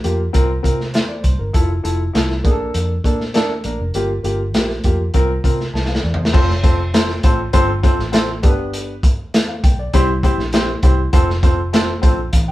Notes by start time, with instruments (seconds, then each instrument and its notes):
0.04 fingered electric bass F2, grand piano A#3 F4 G4, closed hi-hat
0.33 fingered electric bass C2, grand piano C4 F4 A#4, kick, closed hi-hat
0.63 fingered electric bass C3, grand piano C4 F4 A#4, kick, closed hi-hat
0.81 snare
0.94 grand piano C5, snare, closed hi-hat
1.09 grand piano D5
1.23 fingered electric bass C2, grand piano C5, kick, closed hi-hat
1.39 fingered electric bass G1, grand piano A#4
1.53 fingered electric bass F1, grand piano E4 F4 A4, kick, closed hi-hat
1.83 fingered electric bass F1, grand piano E4 F4 A4, closed hi-hat
2.13 fingered electric bass C2, grand piano E4 F4 A4, snare, closed hi-hat
2.30 snare
2.44 fingered electric bass A#1, grand piano A#3 D4 G#4, kick, closed hi-hat
2.51 grand piano A4
2.74 fingered electric bass F2, closed hi-hat
3.04 fingered electric bass A#2, grand piano A#3 D4 A4, kick, closed hi-hat
3.20 snare
3.34 grand piano A#3 D4 A4, snare, closed hi-hat
3.64 fingered electric bass A#1, grand piano A#3 D4 A#4, closed hi-hat
3.80 fingered electric bass F1
3.94 fingered electric bass G1, grand piano A#3 F4 G4, closed hi-hat
4.23 fingered electric bass G1, grand piano A#3 F4 G4, closed hi-hat
4.54 fingered electric bass A#1, grand piano A#3 F4 G4, snare, closed hi-hat
4.70 snare
4.84 fingered electric bass F2, grand piano A#3 F4 G4, kick, closed hi-hat
5.14 fingered electric bass C2, grand piano C4 F4 A#4, kick, closed hi-hat
5.44 fingered electric bass C3, grand piano C4 F4 A#4, kick, closed hi-hat
5.60 snare
5.74 fingered electric bass C2, grand piano A5, snare
5.85 grand piano F5, snare
5.95 snare
6.03 fingered electric bass E2, grand piano D5
6.14 floor tom
6.19 grand piano C5
6.25 snare
6.33 fingered electric bass F1, grand piano C4 F4 A4 C5, kick, crash
6.50 snare
6.63 grand piano C4 F4 A4 C5, kick, closed hi-hat
6.94 grand piano C4 F4 A4 C5, snare, closed hi-hat
7.09 snare
7.23 fingered electric bass A1, grand piano C4 F4 A4 C5, kick, closed hi-hat
7.53 fingered electric bass G1, grand piano C4 F4 A4 C5, kick, closed hi-hat
7.83 grand piano C4 F4 A4 C5, kick, closed hi-hat
7.99 fingered electric bass A1, snare
8.12 grand piano C4 F4 A4 C5, snare, closed hi-hat
8.43 fingered electric bass G1, grand piano B3 D4 G4 A4, kick, closed hi-hat
8.50 grand piano B4
8.74 closed hi-hat
9.03 kick, closed hi-hat
9.34 snare, closed hi-hat
9.48 grand piano F5
9.64 fingered electric bass B1, grand piano G5, kick, closed hi-hat
9.79 grand piano D5
9.93 fingered electric bass C2, grand piano C4 E4 G4 C5, kick, closed hi-hat
10.23 grand piano C4 E4 G4 C5, kick, closed hi-hat
10.38 fingered electric bass A#1, snare
10.53 grand piano C4 E4 G4 C5, snare, closed hi-hat
10.83 fingered electric bass C2, grand piano C4 E4 G4 C5, kick, closed hi-hat
11.13 fingered electric bass F1, grand piano C4 F4 A4 C5, kick, closed hi-hat
11.30 snare
11.43 grand piano C4 F4 A4 C5, kick, closed hi-hat
11.73 grand piano C4 F4 A4 C5, snare, closed hi-hat
12.02 fingered electric bass A#1, grand piano C4 F4 A4 C5, kick, closed hi-hat
12.32 fingered electric bass A1, grand piano F5, kick, closed hi-hat
12.48 grand piano G5